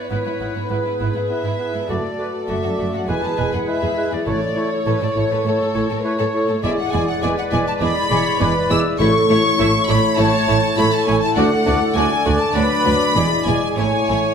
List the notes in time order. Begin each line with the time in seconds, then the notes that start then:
Already playing: B3 E4 B4 D5
0.10 G#1 G#2 B3 E4 B4 C#5
0.26 G#2 E4
0.40 G#1 G#2 B3 E4 B4
0.55 G#2 E4
0.70 G#1 G#2 B3 E4 G#4 B4
0.85 G#2 E4
0.99 G#1 G#2 B3 E4 B4
1.14 G#2 E4
1.29 B3 E4 B4 E5
1.44 G#2 E4
1.59 B3 E4 B4
1.73 G#2 E4
1.89 F#1 F#2 A3 F#4 A4 D5
2.19 A3 F#4 B4 D5
2.48 F#1 F#2 A3 F#4 A4 D5 E5
2.64 F#2 F#4
2.79 F#1 F#2 A3 F#4 D5
2.93 F#2 F#4 F#5
3.08 E1 E2 G#3 E4 G#4 B4 G#5
3.23 E2 G#4 A5
3.37 E1 E2 G#3 E4 G#4 B4 G#5
3.52 E2 G#4 F#5
3.68 G#3 E4 B4 E5
3.82 E2 G#4
3.97 G#3 E4 B4
4.12 E2 G#4 D5
4.26 A1 A2 A3 E4 A4 C#5 D5
4.56 A3 E4 C#5
4.73 C#5
4.85 A1 A2 A3 E4 A4 B4 C#5
5.01 A2 A4 D5
5.16 A1 A2 A3 E4 A4 C#5
5.31 A2 A4 B4
5.45 A1 A2 A3 E4 A4 C#5
5.61 A2 A4
5.75 A1 A2 A3 E4 A4 C#5
5.90 A2 A4
6.04 A3 E4 B4 C#5
6.19 A2 A4
6.34 A3 E4 A4 C#5
6.48 A2 A4
6.63 E1 E2 G#3 E4 G#4 D5 E5
6.77 F#5
6.92 E1 E2 G#3 E4 G#4 D5 G#5
7.07 F#5
7.22 E1 E2 G#3 E4 G#4 B4 D5 G#5
7.38 F#5
7.51 E1 E2 G#3 E4 G#4 D5 G#5
7.67 A5
7.81 E1 E2 G#3 E4 G#4 D5 B5
8.10 E1 E2 G#3 E4 G#4 C#5 D5
8.40 E1 E2 G#3 E4 G#4 B4 D5
8.70 E1 E2 G#3 E4 G#4 D5 E6
8.99 A1 A2 A3 E4 A4 C#5 C#6
9.29 A1 A2 A3 E4 C#5
9.58 A1 A2 A3 E4 C#5 E5
9.88 A1 A2 A3 E4 C#5 D5 B5
10.18 A1 A2 A3 E4 C#5 A5
10.47 A1 A2 A3 E4 C#5
10.77 A1 A2 A3 E4 A4 C#5 B5
10.92 A5
11.06 A1 A2 A3 E4 C#5 G#5
11.22 A5
11.36 D2 A3 D4 F#4 D5 F#5
11.66 D2 A3 D4 F#4 D5
11.95 D2 A3 D4 F#4 D5 G#5
12.26 D2 A3 D4 F#4 D5
12.40 A5
12.55 D2 F#3 D4 F#4 B4 D5 B5
12.85 D2 F#3 D4 F#4 D5
13.15 E1 E2 G#3 E4 G#4 D5
13.46 E1 E2 G#3 E4 G#4 D5 G#5
13.77 A1 A2 A3 E4 C#5 G#5
14.08 A1 A2 A3 E4 C#5